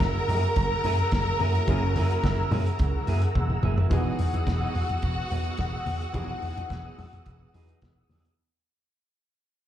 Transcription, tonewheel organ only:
Already playing: G#4 F#5 A#5 E6
3.92 G#4 F#5 D#6 E6

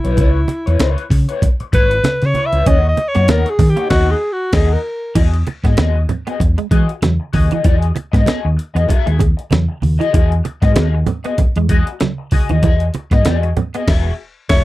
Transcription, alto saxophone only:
0.00 E4
1.74 B4
2.25 C#5
2.46 E5
2.67 D#5
2.88 D#5
3.08 C#5
3.30 A#4
3.50 G#4
3.69 G4
3.90 F#4
4.11 G#4
4.32 F#4
4.54 G#4
4.74 A#4
14.49 C#5

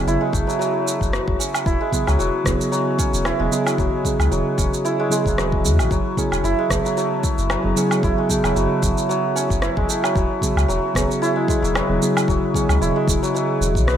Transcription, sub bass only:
0.06 F#1
0.33 F#1
1.01 F#1
1.27 F#1
1.66 E1
2.08 C#2
2.19 E1
2.46 E1
3.13 E1
3.40 E1
3.78 E1
4.19 C#2
4.31 E1
4.58 E1
5.25 E1
5.64 E2
5.79 G#1
5.91 F#1
6.32 E1
6.43 F#1
6.70 F#1
7.38 F#1
7.64 F#1
8.03 F#1
8.44 E1
8.56 F#1
8.83 F#1
9.50 F#1
9.77 F#1
10.16 E1
10.56 C#2
10.69 E1
10.95 E1
11.62 E1
11.89 E1
12.28 E1
12.69 C#2
12.81 E1
13.07 E1
13.61 E1
13.75 B1

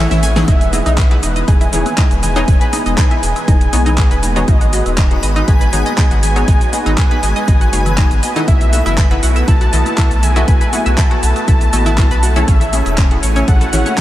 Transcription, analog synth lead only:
Already playing: E5
0.48 E5
1.48 G#5
2.23 G#5
2.98 G#5
4.48 D#5
5.48 G#5
6.23 G#5
6.98 G#5
8.48 E5
9.48 A5
10.23 G#5
10.98 A5
12.48 E5
13.48 F#5

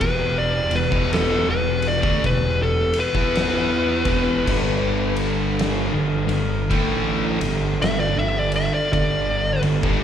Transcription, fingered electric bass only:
0.01 E1
0.71 E1
0.92 E1
1.47 E1
2.03 D2
2.24 E1
3.15 E2
4.05 E1
4.48 G1
5.93 G1
6.28 G1
6.70 A1
7.39 G1
7.82 G1
8.16 G1
8.93 G1
9.62 G1
9.83 G1

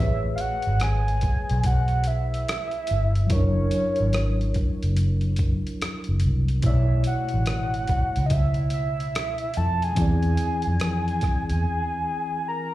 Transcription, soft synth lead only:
0.00 E5
0.35 F5
0.41 F#5
0.83 G#5
1.66 F#5
2.07 E5
3.32 C#5
6.66 E5
7.07 F#5
8.26 D#5
8.32 E5
8.73 E5
9.57 A5
9.84 G#5
12.48 A#5

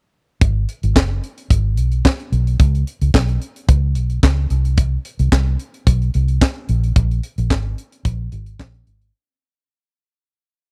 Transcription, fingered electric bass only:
0.42 G#1
0.84 G#1
0.96 F#1
1.51 G#1
1.78 B1
2.32 B1
2.60 C#2
3.02 C#2
3.14 B1
3.69 C#2
3.96 B1
4.23 C#2
4.50 C2
5.20 C2
5.32 C2
5.87 B1
6.15 C2
6.69 A#1
6.96 A#1
7.38 A#1
8.05 A#1
8.32 G#1
8.59 A#1
8.87 G#1

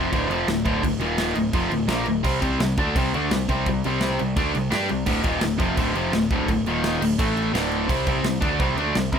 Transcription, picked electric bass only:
Already playing: F1
0.13 D1
0.29 F1
0.47 D1
0.66 D1
0.83 D1
1.00 D#1
1.36 D1
1.53 F1
1.70 D1
1.88 A#1
2.07 D1
2.24 C2
2.43 C2
2.59 C2
2.78 D2
2.96 C2
3.14 D2
3.31 C2
3.48 C2
3.67 C2
3.86 C2
4.21 C2
4.36 D2
4.55 C2
4.73 G2
4.92 C2
5.06 D1
5.24 D#1
5.43 D1
5.60 F1
5.77 D1
5.95 F1
6.13 D1
6.30 D1
6.48 D1
6.64 D#1
7.00 D1
7.19 A1
7.53 D1
7.89 C2
8.07 C2
8.23 C2
8.41 D2
8.60 C2
8.75 D2
8.95 C2
9.12 C2

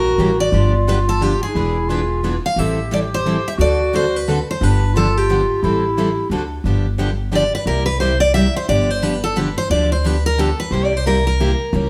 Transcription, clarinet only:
Already playing: F#4
0.53 F4
1.48 D#4
1.54 E4
1.88 F4
2.57 G4
3.58 F#4
4.61 D4
4.94 F4
5.63 E4
6.30 D4

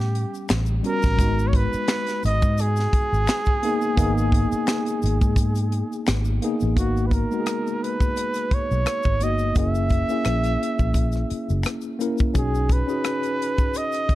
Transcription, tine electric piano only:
Already playing: G3 B3 C#4 F#5
0.83 G3 B3 C#4 F#4
1.19 G#3 B3 D#4 F#4
3.63 A#3 B3 D#4 G#4
3.97 A#3 B3 D#4 G#4
6.42 A#3 B3 D#4 G#4
6.76 A#3 B3 D#4 F#4
7.31 G#3 B3 D#4 F#4
7.40 G#4
9.21 A#3 B3 D#4 F#4
9.55 A#3 C#4 E4 G#4
10.09 A#3 C#4 E4 G#4
11.99 A#3 C#4 E4 A#4
12.34 C#4 D#4 F#4 G#4
12.87 C#4 D#4 F#4 G#4

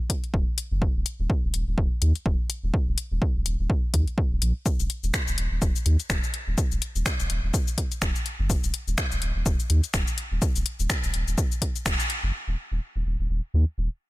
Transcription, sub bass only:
0.34 D#1
0.72 F#1
0.96 D#1
1.20 D#1
1.44 D#1
1.54 D#1
1.68 D#1
1.78 D#1
2.02 D#2
2.26 D#1
2.64 D#1
2.88 D#1
3.12 D#1
3.35 D#1
3.46 D#1
3.60 D#1
3.94 D#2
4.32 D#1
4.42 A#1
4.80 D#1
5.04 D#1
5.28 D#1
5.38 D#1
5.52 D#1
5.62 D#1
5.86 D#2
6.10 D#1
6.48 D#1
6.72 D#1
6.96 D#1
7.20 D#1
7.30 D#1
7.44 D#1
8.02 D#1
8.40 F#1
8.64 D#1
8.88 D#1
9.12 D#1
9.22 D#1
9.36 D#1
9.46 D#1
9.70 D#2
9.94 D#1
10.32 D#1
10.56 D#1
10.80 D#1
11.04 D#1
11.14 D#1
11.28 D#1
11.86 D#1
12.24 F#1
12.48 D#1
12.72 D#1
12.96 D#1
13.06 D#1
13.20 D#1
13.30 D#1
13.54 D#2
13.78 D#1

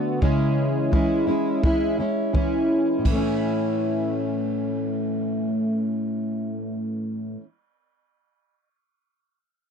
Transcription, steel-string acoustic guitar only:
Already playing: D3 A3 B3 F#4
0.21 C#3 E3 G#3 C#4 E4
0.92 E3 G#3 C#4 E4
1.27 G#3 C#4 E4
1.63 E3 G#3 C#4 E4
1.98 G#3 C#4 E4
2.33 E3 G#3 C#4 E4
2.98 A2
3.05 E3
3.10 A3
3.15 C#4
3.20 E4

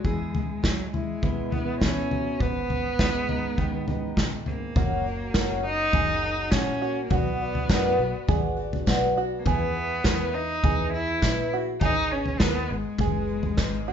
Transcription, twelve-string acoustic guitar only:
4.76 F#2 C#3 F#3 A#3 C#4 F#4
5.06 F#3 A#3 C#4 F#4
5.34 F#2 C#3 F#3 A#3 C#4 F#4
5.65 F#3 A#3 F#4
5.93 F#3 A#3 C#4 F#4
6.23 F#3 A#3 C#4 F#4
6.52 F#2 C#3 F#3 A#3 C#4 F#4
6.82 F#3 A#3 C#4 F#4
7.10 B2 F#3 B3 D4 F#4
7.41 B3 D4 F#4
7.69 B2 F#3 B3 D4 F#4
7.99 B3 D4 F#4
8.28 F#3 B3 D4 F#4
8.57 B3 D4 F#4
8.86 B2 F#3 B3 D4 F#4
9.16 B3 D4 F#4
9.45 E3 B3 E4 G#4
9.75 B3 E4 G#4
10.06 E3 B3 E4 G#4
10.35 B3 E4 G#4
10.64 E3 B3 E4 G#4
10.94 B3 E4 G#4
11.23 E3 B3 E4 G#4
11.53 B3 G#4
11.82 G#2 D#3 G#3 B3 D#4 G#4
12.11 G#3 B3 D#4 G#4
12.40 G#2 D#3 G#3 B3 D#4 G#4
12.70 G#3 B3 D#4 G#4
13.00 G#3 B3 D#4 G#4
13.28 G#3 B3 D#4 G#4
13.59 G#2 D#3 G#3 B3 D#4 G#4
13.88 D#4 G#4

